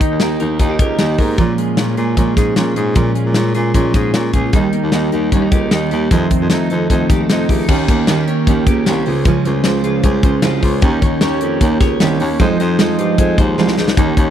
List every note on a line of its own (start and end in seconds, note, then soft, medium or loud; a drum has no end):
0.00 0.19 D#3 medium
0.00 0.21 A#3 medium
0.00 0.21 D#4 medium
0.00 1.42 D#4 medium
0.00 0.19 G4 medium
0.00 0.21 G4 medium
0.00 0.40 A#4 medium
0.00 kick medium
0.00 closed hi-hat medium
0.11 0.19 D#2 medium
0.20 0.36 D#2 medium
0.20 0.40 D#3 medium
0.20 0.41 A#3 medium
0.20 0.41 D#4 medium
0.20 0.39 G4 medium
0.20 snare loud
0.20 closed hi-hat medium
0.40 0.56 D#2 medium
0.40 0.59 A#3 soft
0.40 0.60 D#4 soft
0.40 0.60 G4 medium
0.40 0.79 A#4 medium
0.40 closed hi-hat medium
0.59 0.76 D#2 medium
0.59 0.98 D#3 medium
0.59 1.00 A#3 medium
0.59 1.00 D#4 medium
0.59 0.69 F4 medium
0.59 1.00 G4 medium
0.59 kick medium
0.59 closed hi-hat medium
0.69 0.98 G4 soft
0.79 0.96 C#2 medium
0.79 1.18 A#4 medium
0.79 kick medium
0.79 closed hi-hat medium
0.99 1.15 D#2 medium
0.99 1.19 D#3 medium
0.99 1.19 A#3 medium
0.99 1.19 D#4 medium
0.99 1.18 G4 medium
0.99 snare loud
0.99 closed hi-hat medium
1.18 1.35 G#2 medium
1.18 1.39 A#3 soft
1.18 1.39 D#4 soft
1.18 1.39 G4 soft
1.18 1.62 A#4 medium
1.18 kick medium
1.18 open hi-hat medium
1.38 1.54 A#2 medium
1.38 1.78 A#2 medium
1.38 1.77 F3 medium
1.38 1.78 G#3 medium
1.38 1.79 C#4 medium
1.38 1.79 F4 medium
1.38 kick medium
1.38 closed hi-hat medium
1.58 3.14 G#3 medium
1.58 closed hi-hat medium
1.77 1.94 A#2 medium
1.77 1.98 F3 medium
1.77 1.98 G#3 medium
1.77 1.98 C#4 medium
1.77 1.96 F4 medium
1.77 snare medium
1.77 closed hi-hat medium
1.97 2.13 A#2 medium
1.97 2.17 G#3 soft
1.97 2.18 C#4 soft
1.97 2.17 F4 medium
1.97 2.36 G#4 medium
1.97 closed hi-hat medium
2.17 2.33 A#2 medium
2.17 2.56 F3 medium
2.17 2.57 G#3 medium
2.17 2.57 C#4 medium
2.17 2.58 F4 medium
2.17 kick medium
2.17 closed hi-hat medium
2.37 2.53 G#2 medium
2.37 2.75 G#4 medium
2.37 kick medium
2.37 snare soft
2.37 closed hi-hat medium
2.56 2.73 A#2 medium
2.56 2.76 F3 medium
2.56 2.77 G#3 medium
2.56 2.76 C#4 medium
2.56 2.75 F4 medium
2.56 snare loud
2.56 closed hi-hat medium
2.76 2.92 G#2 medium
2.76 2.95 G#3 soft
2.76 2.96 C#4 soft
2.76 2.96 F4 soft
2.76 3.54 G#4 medium
2.76 closed hi-hat medium
2.95 3.35 A#2 medium
2.95 3.12 A#2 loud
2.95 3.34 F3 medium
2.95 3.35 G#3 medium
2.95 3.36 C#4 medium
2.95 3.36 F4 medium
2.95 kick loud
2.95 closed hi-hat medium
3.15 4.58 G#3 medium
3.15 closed hi-hat medium
3.26 3.34 A#2 medium
3.34 3.51 A#2 medium
3.34 3.55 F3 medium
3.34 3.56 G#3 medium
3.34 3.55 C#4 medium
3.34 3.54 F4 medium
3.34 snare loud
3.34 closed hi-hat medium
3.55 3.71 A#2 medium
3.55 3.73 G#3 soft
3.55 3.75 C#4 medium
3.55 3.75 F4 medium
3.55 3.93 G#4 medium
3.55 closed hi-hat medium
3.74 3.91 A#2 medium
3.74 4.13 F3 medium
3.74 4.14 G#3 medium
3.74 4.15 C#4 medium
3.74 4.15 F4 medium
3.74 kick medium
3.74 closed hi-hat medium
3.94 4.11 G#2 medium
3.94 4.33 G#4 medium
3.94 kick medium
3.94 snare soft
3.94 closed hi-hat medium
4.14 4.30 A#2 medium
4.14 4.34 F3 medium
4.14 4.34 G#3 medium
4.14 4.35 C#4 medium
4.14 4.33 F4 medium
4.14 snare loud
4.14 closed hi-hat medium
4.33 4.50 C#2 medium
4.33 4.54 G#3 soft
4.33 4.54 C#4 soft
4.33 4.54 F4 soft
4.33 4.57 G#4 medium
4.33 kick medium
4.33 closed hi-hat medium
4.53 4.69 D#2 medium
4.53 4.92 D#3 medium
4.53 4.92 G3 medium
4.53 4.93 A#3 medium
4.53 4.94 D#4 medium
4.53 kick loud
4.53 closed hi-hat medium
4.73 6.15 A#3 medium
4.73 closed hi-hat medium
4.83 4.91 D#2 medium
4.92 5.09 D#2 medium
4.92 5.12 D#3 medium
4.92 5.13 G3 medium
4.92 5.13 A#3 medium
4.92 5.11 D#4 medium
4.92 snare medium
4.92 closed hi-hat medium
5.12 5.29 D#2 medium
5.12 5.31 G3 soft
5.12 5.32 A#3 soft
5.12 5.32 D#4 medium
5.12 5.51 G4 medium
5.12 closed hi-hat medium
5.32 5.48 D#2 medium
5.32 5.71 D#3 medium
5.32 5.71 G3 medium
5.32 5.72 A#3 medium
5.32 5.42 C#4 medium
5.32 5.74 D#4 medium
5.32 kick medium
5.32 closed hi-hat medium
5.42 5.71 D#4 soft
5.52 5.68 C#2 medium
5.52 5.90 G4 medium
5.52 kick medium
5.52 closed hi-hat medium
5.71 5.88 D#2 medium
5.71 5.91 D#3 medium
5.71 5.92 G3 medium
5.71 5.92 A#3 medium
5.71 5.90 D#4 medium
5.71 snare loud
5.71 closed hi-hat medium
5.91 6.08 D#2 medium
5.91 6.11 G3 soft
5.91 6.12 A#3 soft
5.91 6.11 D#4 soft
5.91 6.15 G4 medium
5.91 closed hi-hat medium
6.11 6.50 F2 medium
6.11 6.27 F2 loud
6.11 6.49 C3 medium
6.11 6.51 D#3 medium
6.11 7.68 F3 medium
6.11 6.51 A3 medium
6.11 6.53 D#4 medium
6.11 kick medium
6.11 closed hi-hat medium
6.31 7.73 C4 soft
6.31 kick medium
6.31 closed hi-hat medium
6.41 6.49 F2 medium
6.50 6.67 F2 medium
6.50 6.70 C3 medium
6.50 6.70 D#3 medium
6.50 6.71 A3 medium
6.50 6.68 D#4 medium
6.50 snare loud
6.50 closed hi-hat medium
6.70 6.87 F2 medium
6.70 6.90 D#3 soft
6.70 6.91 A3 soft
6.70 6.90 D#4 medium
6.70 7.10 A4 medium
6.70 closed hi-hat medium
6.90 7.06 F2 medium
6.90 7.28 C3 medium
6.90 7.28 D#3 medium
6.90 7.30 A3 medium
6.90 7.30 D#4 medium
6.90 kick medium
6.90 closed hi-hat medium
7.10 7.26 D#2 medium
7.10 7.21 G4 medium
7.10 kick loud
7.10 snare soft
7.10 closed hi-hat medium
7.21 7.49 A4 medium
7.29 7.46 F2 medium
7.29 7.49 C3 medium
7.29 7.49 D#3 medium
7.29 7.50 A3 medium
7.29 7.49 D#4 medium
7.29 snare loud
7.29 closed hi-hat medium
7.49 7.65 C#2 medium
7.49 7.68 D#3 soft
7.49 7.70 A3 soft
7.49 7.69 D#4 soft
7.49 7.59 G4 medium
7.49 kick medium
7.49 open hi-hat medium
7.59 7.73 A4 medium
7.69 7.85 D#2 medium
7.69 7.89 D#3 medium
7.69 7.89 A#3 medium
7.69 7.89 C#4 medium
7.69 7.88 G4 medium
7.69 kick loud
7.69 crash medium
7.88 8.04 D#2 medium
7.88 8.07 A#3 soft
7.88 8.09 C#4 medium
7.88 8.08 G4 medium
7.88 kick medium
7.88 closed hi-hat medium
8.07 8.24 D#2 medium
8.07 8.46 D#3 medium
8.07 8.47 A#3 medium
8.07 8.49 C#4 medium
8.07 8.18 F4 medium
8.07 8.48 G4 medium
8.07 snare loud
8.07 closed hi-hat medium
8.18 8.66 G4 medium
8.28 8.86 C#4 medium
8.28 closed hi-hat medium
8.47 8.63 D#2 medium
8.47 8.67 D#3 medium
8.47 8.67 A#3 medium
8.47 8.67 C#4 medium
8.47 8.66 G4 medium
8.47 kick medium
8.47 closed hi-hat medium
8.67 8.83 C#2 medium
8.67 8.87 A#3 soft
8.67 8.87 C#4 medium
8.67 8.87 G4 medium
8.67 kick loud
8.67 closed hi-hat medium
8.86 9.03 C2 medium
8.86 9.06 D#3 medium
8.86 9.07 A#3 medium
8.86 9.07 C#4 medium
8.86 9.07 G4 medium
8.86 snare medium
8.86 closed hi-hat medium
9.06 9.39 C#2 medium
9.06 9.25 C#3 medium
9.06 9.26 G#3 soft
9.06 9.26 C#4 soft
9.06 9.26 F4 soft
9.06 9.26 C5 soft
9.06 open hi-hat medium
9.25 9.46 C#3 medium
9.25 9.46 F3 medium
9.25 9.46 G#3 medium
9.25 9.46 C#4 medium
9.25 9.45 F4 medium
9.25 9.44 C5 medium
9.25 kick loud
9.25 closed hi-hat medium
9.45 9.62 C#2 medium
9.45 9.64 G#3 soft
9.45 9.64 C#4 soft
9.45 9.65 F4 medium
9.45 9.65 C5 medium
9.45 closed hi-hat medium
9.64 9.81 C#2 medium
9.64 10.04 C#3 medium
9.64 10.04 F3 medium
9.64 10.02 G#3 medium
9.64 10.04 C#4 medium
9.64 10.05 F4 medium
9.64 10.05 C5 medium
9.64 snare medium
9.64 closed hi-hat medium
9.84 10.00 C#2 medium
9.84 10.42 F4 medium
9.84 closed hi-hat medium
10.03 10.20 C#2 loud
10.03 10.24 G#3 medium
10.03 10.24 C#4 medium
10.03 10.23 F4 medium
10.03 10.22 C5 medium
10.03 kick medium
10.03 closed hi-hat medium
10.23 10.40 C#2 medium
10.23 10.43 G#3 soft
10.23 10.43 C#4 medium
10.23 10.44 F4 medium
10.23 10.43 C5 medium
10.23 kick loud
10.23 closed hi-hat medium
10.42 10.59 C2 medium
10.42 10.63 C#3 medium
10.42 10.63 F3 medium
10.42 10.63 G#3 medium
10.42 10.63 C#4 medium
10.42 10.62 F4 medium
10.42 10.61 C5 medium
10.42 snare loud
10.42 closed hi-hat medium
10.62 10.79 C#2 loud
10.62 10.83 G#3 soft
10.62 10.82 C#4 soft
10.62 10.83 F4 soft
10.62 10.83 C5 medium
10.62 kick medium
10.62 open hi-hat medium
10.82 10.99 D#2 loud
10.82 11.02 D#3 medium
10.82 11.03 A#3 medium
10.82 11.03 C#4 medium
10.82 11.01 G4 medium
10.82 11.00 C#5 medium
10.82 kick loud
10.82 closed hi-hat medium
11.01 11.19 D#2 medium
11.01 11.22 C#4 soft
11.01 11.22 G4 soft
11.01 11.21 C#5 medium
11.01 kick medium
11.01 closed hi-hat medium
11.21 11.38 D#2 medium
11.21 11.65 D#3 medium
11.21 11.60 A#3 medium
11.21 11.61 C#4 medium
11.21 11.62 G4 medium
11.21 11.62 C#5 medium
11.21 snare loud
11.21 closed hi-hat medium
11.41 11.58 F2 medium
11.41 11.99 G4 medium
11.41 closed hi-hat medium
11.61 11.77 D#2 loud
11.61 11.81 A#3 medium
11.61 11.82 C#4 medium
11.61 11.81 G4 medium
11.61 11.80 C#5 medium
11.61 kick medium
11.61 closed hi-hat medium
11.80 11.97 C#2 medium
11.80 12.00 C#4 medium
11.80 12.01 G4 medium
11.80 12.01 C#5 medium
11.80 kick loud
11.80 snare soft
11.80 closed hi-hat medium
12.00 12.17 C2 medium
12.00 12.20 D#3 medium
12.00 12.21 A#3 medium
12.00 12.21 C#4 medium
12.00 12.21 G4 medium
12.00 12.19 C#5 medium
12.00 snare loud
12.00 closed hi-hat medium
12.20 12.37 D#2 medium
12.20 12.40 C#4 soft
12.20 12.41 G4 soft
12.20 12.40 C#5 medium
12.20 open hi-hat medium
12.40 12.56 F2 loud
12.40 12.59 F3 medium
12.40 12.60 G#3 medium
12.40 12.60 D#4 medium
12.40 12.60 F4 medium
12.40 12.58 C5 loud
12.40 kick loud
12.40 closed hi-hat medium
12.59 12.76 F2 loud
12.59 12.79 D#4 soft
12.59 12.79 F4 soft
12.59 12.79 C5 medium
12.59 closed hi-hat medium
12.79 12.95 F2 medium
12.79 13.18 F3 medium
12.79 13.17 G#3 medium
12.79 13.19 D#4 medium
12.79 13.19 F4 medium
12.79 13.20 C5 loud
12.79 snare loud
12.79 closed hi-hat medium
12.99 13.15 G2 medium
12.99 13.57 F4 medium
12.99 closed hi-hat medium
13.18 13.34 F2 medium
13.18 13.38 G#3 medium
13.18 13.39 D#4 medium
13.18 13.39 F4 medium
13.18 13.37 C5 medium
13.18 kick medium
13.18 closed hi-hat medium
13.38 13.54 D#2 medium
13.38 13.58 D#4 medium
13.38 13.58 F4 soft
13.38 13.58 C5 medium
13.38 kick medium
13.38 closed hi-hat medium
13.58 13.74 C2 medium
13.58 13.78 F3 medium
13.58 13.78 G#3 medium
13.58 13.78 D#4 medium
13.58 13.78 F4 medium
13.58 13.77 C5 medium
13.58 snare medium
13.68 snare medium
13.78 13.94 C#2 medium
13.78 13.98 D#4 soft
13.78 13.98 F4 soft
13.78 13.97 C5 medium
13.78 snare medium
13.88 snare medium
13.97 14.13 D#2 loud
13.97 14.17 D#3 medium
13.97 14.17 A#3 medium
13.97 14.17 C#4 medium
13.97 14.17 G4 medium
13.97 14.16 C#5 medium
13.97 kick loud
13.97 closed hi-hat medium
14.17 14.30 D#2 medium
14.17 14.30 C#4 soft
14.17 14.30 G4 soft
14.17 14.30 C#5 medium
14.17 kick medium
14.17 closed hi-hat medium